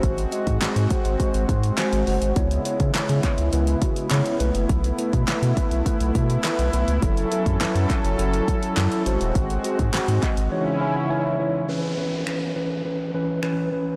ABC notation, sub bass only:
X:1
M:4/4
L:1/16
Q:1/4=103
K:C#m
V:1 name="Sub bass" clef=bass
G,,,2 z G,, G,, G,, z G,,, z G,,, G,,2 z G,,, F,,, G,,, | C,,2 z C, C, C, z C,, C,,2 z2 C, z B,,, F,,, | B,,,2 z B,, B,, B,, z B,,, z B,,, B,,2 z B,,, B,,, C,, | F,,,2 z F,, F,, F,, z F,,, F,,,2 z2 F,, z G,,, D,,, |
G,,,2 z G,, G,, G,, z G,,, z8 | z16 |]